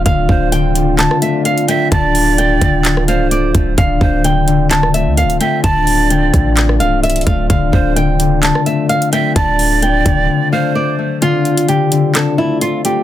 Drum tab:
HH |x-------x---x---x---x---x-x-x---|x---o---x---x---x---x---x---x---|x-------x---x---x---x---x-x-x---|x---o---x---x---x---x---xxxxx---|
CP |----------------x---------------|----------------x---------------|----------------x---------------|----------------x---------------|
SD |------------------r-------------|------------------r-------------|------------------r-------------|------------------r-------------|
BD |o---o---------------------------|o-----------o---------------o---|o---o---------------------------|o-----------o---------------o---|

HH |x-------x---x---x---x---x-x-x---|x---o---x---x-------------------|x---x-x-x---x---x-------x---x---|
CP |----------------x---------------|--------------------------------|----------------x---------------|
SD |------------------r-------------|--------------------------------|--------------------------------|
BD |o---o---------------------------|o-----------o-------------------|--------------------------------|